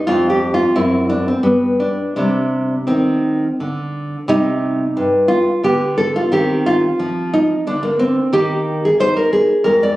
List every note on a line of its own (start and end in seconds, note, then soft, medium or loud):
0.07 0.61 F2 medium
0.07 0.71 C4 medium
0.07 0.28 F4 loud
0.30 0.51 G4 medium
0.54 0.75 F4 loud
0.76 1.30 F#2 medium
0.76 1.27 C4 medium
0.76 1.08 E4 loud
1.10 1.26 D4 medium
1.28 1.43 C4 medium
1.43 2.01 G2 medium
1.43 2.12 G3 soft
1.43 1.77 B3 medium
1.80 2.14 D4 medium
2.16 2.74 C3 medium
2.16 4.25 G3 soft
2.16 2.85 D4 medium
2.87 3.44 D#3 medium
2.87 3.55 C4 medium
3.60 4.15 D3 medium
4.28 4.82 C3 medium
4.28 5.60 G3 medium
4.28 5.26 D#4 loud
4.97 5.50 G2 medium
5.28 5.61 F4 medium
5.64 6.18 D3 medium
5.64 6.27 B3 soft
5.64 5.96 G4 medium
5.98 6.14 A4 loud
6.16 6.32 F4 medium
6.32 6.85 D#3 medium
6.32 7.98 C4 medium
6.32 6.64 G4 loud
6.66 7.29 F4 loud
6.99 7.52 F3 medium
7.34 7.64 D#4 loud
7.67 8.19 D3 medium
7.67 7.82 D4 loud
7.83 7.99 A#3 loud
7.99 8.31 C4 loud
8.33 8.86 D#3 medium
8.33 9.62 A#3 medium
8.33 8.80 G4 loud
8.85 9.00 G#4 medium
9.00 9.52 D#4 medium
9.00 9.16 C5 loud
9.17 9.32 A#4 loud
9.33 9.64 G#4 loud
9.64 9.96 F2 medium
9.64 9.96 G#3 medium
9.64 9.81 A#4 loud
9.83 9.96 D5 loud